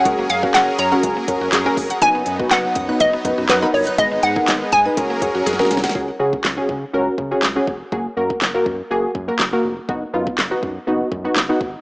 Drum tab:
HH |x---x---x---x---x---x---x---o-x-|x---x---x---x---x---x---x---o-x-|x---x---x---x---x---x---x---x-x-|--------------------------------|
CP |--------x---------------x-------|--------x---------------x-------|--------x-----------------------|--------x---------------x-------|
SD |--------o---------------o-------|--------o---------------o-------|--------o---------------oooooooo|--------o---------------o-------|
BD |o-----o---------o---o-------o---|o-----o-----o---o---o-----------|o-----o-----o---o---o-----------|o-----o-----o-------o-------o---|

HH |--------------------------------|--------------------------------|
CP |--------x---------------x-------|--------x---------------x-------|
SD |--------o---------------o-------|--------o---------------o-------|
BD |o-----o-----o-------o-----------|o-----o-----o-------o-------o---|